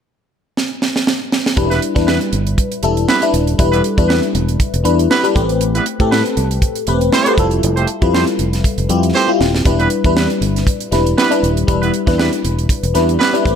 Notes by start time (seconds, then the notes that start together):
0.57 snare
0.82 snare
0.96 snare
1.07 snare
1.32 snare
1.46 snare
1.56 E1 G3 D4 E4 B4, kick, closed hi-hat
1.71 G3 B3 E4 B4, snare, closed hi-hat
1.82 closed hi-hat
1.95 E2 G3 D4 E4 B4, kick, snare, closed hi-hat
2.07 G3 B3 E4 B4, snare
2.21 closed hi-hat
2.33 G1, closed hi-hat
2.47 closed hi-hat
2.58 kick, closed hi-hat
2.72 closed hi-hat
2.83 E1 G3 D4 E4 A4, closed hi-hat
2.97 closed hi-hat
3.08 G3 B3 E4 B4, snare
3.21 G3 D4 E4 B4, closed hi-hat
3.34 D#1, closed hi-hat
3.47 closed hi-hat
3.58 E1 G3 D4 E4 B4, kick, closed hi-hat
3.72 G3 B3 E4 B4, closed hi-hat
3.84 closed hi-hat
3.97 E2 G3 D4 E4 B4, kick, closed hi-hat
4.08 G3 B3 E4 B4, snare
4.23 closed hi-hat
4.35 E1, closed hi-hat
4.49 closed hi-hat
4.60 kick, closed hi-hat
4.74 E1, closed hi-hat
4.84 E2 G3 D4 E4 B4, closed hi-hat
4.99 closed hi-hat
5.10 G3 B3 E4 B4, snare
5.23 G3 D4 E4 B4, closed hi-hat
5.35 A1 A3 C4 G4 B4, kick, closed hi-hat
5.49 closed hi-hat
5.61 closed hi-hat
5.75 G3 B3 E4 B4, closed hi-hat
5.86 closed hi-hat
6.00 A2 A3 C4 G4 A4, kick, closed hi-hat
6.11 G3 B3 E4 B4, snare
6.26 closed hi-hat
6.37 C2, closed hi-hat
6.51 closed hi-hat
6.62 kick, closed hi-hat
6.75 closed hi-hat
6.87 E1 A3 C4 G4 B4, closed hi-hat
7.01 closed hi-hat
7.12 G3 C4 E4 C5, snare
7.26 A3 C4 G4 B4, closed hi-hat
7.38 F1 G3 E4 F4 A4, kick, closed hi-hat
7.51 closed hi-hat
7.63 F1, closed hi-hat
7.76 A3 C4 G4 C5, closed hi-hat
7.87 closed hi-hat
8.01 F2 G3 E4 F4 B4, kick, closed hi-hat
8.13 A3 C4 G4 C5, snare
8.27 closed hi-hat
8.39 F1, closed hi-hat
8.53 snare, closed hi-hat
8.64 kick, closed hi-hat
8.78 F1, closed hi-hat
8.89 F2 G3 E4 F4 G4, closed hi-hat
9.03 closed hi-hat
9.14 A3 C4 G4 C5, snare
9.27 G3 E4 F4 G4
9.41 D#1, snare
9.55 snare
9.65 E1 G3 D4 E4 B4, kick, closed hi-hat
9.79 G3 B3 E4 B4, closed hi-hat
9.90 closed hi-hat
10.04 E2 G3 D4 E4 B4, kick, closed hi-hat
10.16 G3 B3 E4 B4, snare
10.30 closed hi-hat
10.41 G1, closed hi-hat
10.56 snare, closed hi-hat
10.67 kick, closed hi-hat
10.80 closed hi-hat
10.91 E1 G3 D4 E4 B4, snare, closed hi-hat
11.06 closed hi-hat
11.17 G3 B3 E4 B4, snare
11.30 G3 D4 E4 B4, closed hi-hat
11.43 D#1, closed hi-hat
11.57 closed hi-hat
11.67 E1 G3 D4 E4 B4, kick, closed hi-hat
11.82 G3 B3 E4 B4, closed hi-hat
11.94 closed hi-hat
12.06 E2 G3 D4 E4 B4, kick, snare, closed hi-hat
12.18 G3 B3 E4 B4, snare
12.33 closed hi-hat
12.45 E1, closed hi-hat
12.59 closed hi-hat
12.69 kick, closed hi-hat
12.83 E1, closed hi-hat
12.94 E2 G3 D4 E4 B4, snare, closed hi-hat
13.09 closed hi-hat
13.19 G3 B3 E4 B4, snare
13.33 G3 D4 E4 B4, closed hi-hat
13.44 A1 A3 C4 G4 B4, kick, closed hi-hat